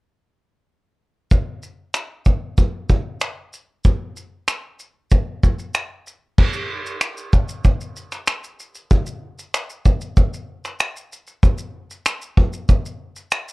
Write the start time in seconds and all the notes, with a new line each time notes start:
1.31 kick, shaker
1.63 shaker
1.94 finger snap, shaker
2.26 kick, shaker
2.58 kick, shaker
2.90 kick, shaker
3.21 finger snap, shaker
3.53 shaker
3.84 kick, shaker
4.16 shaker
4.48 finger snap, shaker
4.79 shaker
5.11 kick, shaker
5.43 kick, shaker
5.59 shaker
5.74 finger snap, shaker
6.07 shaker
6.38 kick, crash
6.53 shaker
6.86 shaker
7.01 finger snap, shaker
7.17 shaker
7.33 kick, shaker
7.49 shaker
7.65 kick, shaker
7.81 shaker
7.97 shaker
8.12 finger snap, shaker
8.27 finger snap, shaker
8.44 shaker
8.60 shaker
8.75 shaker
8.91 kick, shaker
9.06 shaker
9.39 shaker
9.54 finger snap, shaker
9.70 shaker
9.85 kick, shaker
10.01 shaker
10.17 kick, shaker
10.34 shaker
10.64 finger snap, shaker
10.79 finger snap, shaker
10.96 shaker
11.12 shaker
11.27 shaker
11.43 kick, shaker
11.58 shaker
11.91 shaker
12.06 finger snap, shaker
12.21 shaker
12.37 kick
12.53 shaker
12.69 kick, shaker
12.85 shaker
13.16 shaker
13.31 finger snap, shaker
13.48 shaker